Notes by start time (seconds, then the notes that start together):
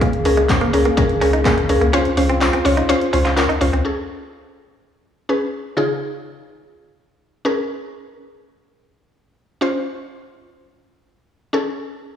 Already playing: C#2 C#3 A#3 C#4 G#4 A#4
0.01 A#3, kick, closed hi-hat
0.13 closed hi-hat
0.25 C#2 C#4 G#4 A#4, muted clean electric guitar stroke, open hi-hat
0.37 G#3, closed hi-hat
0.49 G#1 C#4 G#4 C5, kick, clap, closed hi-hat, tambourine
0.61 A#3, closed hi-hat
0.73 C#2 C#4 G#4 A#4, muted clean electric guitar stroke, open hi-hat
0.85 A#3, closed hi-hat
0.97 C#4 G#4 A#4, muted clean electric guitar stroke, kick, closed hi-hat
1.09 closed hi-hat
1.21 C#2 C#4 G#4 A#4, open hi-hat
1.33 D#4, closed hi-hat
1.45 A#3 C#4 G#4 A#4, kick, clap, closed hi-hat, tambourine
1.57 muted clean electric guitar stroke, closed hi-hat
1.69 C#2 C#4 G#4 A#4, open hi-hat
1.81 C#2 A#3, closed hi-hat
1.93 C4 C#4 F4 C5, closed hi-hat
2.05 closed hi-hat
2.17 C#2 C#4 F4 C5, muted clean electric guitar stroke, open hi-hat
2.29 C4, closed hi-hat
2.41 C2 C#4 F4 C5, clap, closed hi-hat, tambourine
2.53 C4, closed hi-hat
2.65 C#2 C#4 F4 C#5, muted clean electric guitar stroke, open hi-hat
2.77 D#4, closed hi-hat
2.89 C#4 F4 C5, muted clean electric guitar stroke, closed hi-hat
3.01 closed hi-hat
3.13 C#2 C#4 F4 C5, open hi-hat
3.25 F4, clap, closed hi-hat
3.37 C#4 F4 A#4, clap, closed hi-hat, tambourine
3.49 D#4, closed hi-hat
3.61 C#2 C#4 F4 C5, muted clean electric guitar stroke, open hi-hat
3.73 C#2 C4, closed hi-hat
3.85 C#4 G#4 A4
5.29 C#4 G#4 B4
5.77 C#3 D#4 F4 G#4
7.45 C#4 G#4 A#4
9.61 C#4 F4 C5
11.53 C#4 G#4 A4